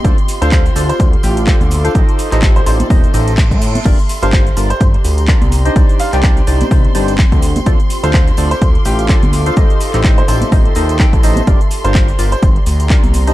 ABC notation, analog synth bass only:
X:1
M:4/4
L:1/16
Q:"Swing 16ths" 1/4=126
K:Gm
V:1 name="Analog synth bass" clef=bass
D,, z2 D,,2 z D,, z D,, z A,,,2 z D,,2 z | A,,, z2 A,,,2 z A,,, z E,,, z A,,,3 A,,2 z | G,,, z2 G,,,2 z G,,, z G,,, z D,,2 z C,,2 z | C,, z2 C,,2 z C,, z C,, z G,,,2 z D,,2 z |
D,, z2 D,,2 z D,, z D,, z A,,,2 z D,,2 z | A,,, z2 A,,,2 z A,,, z A,,, z E,,2 z A,,,2 z | G,,, z2 G,,,2 z G,,, z G,,, z D,,2 z C,,2 z |]